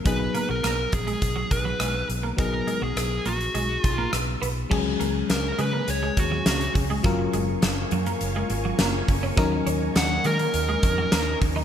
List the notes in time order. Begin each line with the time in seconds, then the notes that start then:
0.04 B1 F#3 B3 D#4 G#4 B4, kick, closed hi-hat
0.20 muted clean electric guitar stroke
0.34 A#3, closed hi-hat
0.49 B1 F#3 A#4
0.63 B1 A#3, cross-stick, closed hi-hat
0.92 A#1 G#4, muted clean electric guitar stroke, kick, closed hi-hat
1.07 G#3, closed hi-hat
1.22 B1, kick, closed hi-hat
1.36 F#3
1.51 B1 B4, muted clean electric guitar stroke, kick, closed hi-hat
1.65 F#3
1.80 B1 G#3, cross-stick, closed hi-hat
1.94 muted clean electric guitar stroke
2.09 B1, closed hi-hat
2.23 A#3
2.37 B1 F#3 B3 D#4 G#4 A#4, kick, closed hi-hat
2.53 muted clean electric guitar stroke
2.67 G#3, closed hi-hat
2.82 B1 F#3 G#4
2.96 B1 G#4, cross-stick, closed hi-hat
3.25 A#1 A#3 F#4, closed hi-hat
3.40 closed hi-hat
3.55 B1 G#3, closed hi-hat
3.83 B1 F4, muted clean electric guitar stroke, kick, closed hi-hat
3.98 A#3
4.13 B1, cross-stick, closed hi-hat
4.42 B1 B3, closed hi-hat
4.70 C#2 F#3 G#3 C#4 G#4 C#5 G#5 C#6, kick, crash
4.86 muted clean electric guitar stroke
5.00 C#2 A#3, closed hi-hat
5.29 C#2 A#4, muted clean electric guitar stroke, snare, closed hi-hat
5.58 C#3 G#3 B4, closed hi-hat
5.73 A#3
5.88 C#2 C#5, closed hi-hat
6.03 G#3
6.17 D#2 F#4, muted clean electric guitar stroke, kick, closed hi-hat
6.32 F#3
6.46 C#2 A#3, snare, closed hi-hat
6.61 muted clean electric guitar stroke, closed hi-hat
6.75 C#2, kick, open hi-hat
6.90 G#3
7.03 F#1 F#3 C#4 F4 A#4 F5, kick, closed hi-hat
7.19 muted clean electric guitar stroke
7.33 F#1 G#3, closed hi-hat
7.62 F#1, muted clean electric guitar stroke, snare, closed hi-hat
7.91 F#2 F#3, closed hi-hat
8.06 A#3, closed hi-hat
8.21 F#1, closed hi-hat
8.36 G#3
8.50 G#1, muted clean electric guitar stroke, closed hi-hat
8.65 F#3
8.79 F#1 A#3, snare, closed hi-hat
9.08 F#1, muted clean electric guitar stroke, kick, open hi-hat
9.23 C#4
9.36 D#2 F#3 C#4 D#4 A#4 D#5, kick, closed hi-hat
9.52 muted clean electric guitar stroke
9.66 D#2 C#4, closed hi-hat
9.96 D#2 F#5, muted clean electric guitar stroke, snare, closed hi-hat
10.24 D#3 G#3 A#4, closed hi-hat
10.39 A#3, closed hi-hat
10.54 D#2, closed hi-hat
10.69 G#3
10.83 F2, muted clean electric guitar stroke, kick, closed hi-hat
10.98 F#3
11.12 D#2 A#3, snare, closed hi-hat
11.27 muted clean electric guitar stroke
11.42 D#2, kick, open hi-hat
11.56 D#4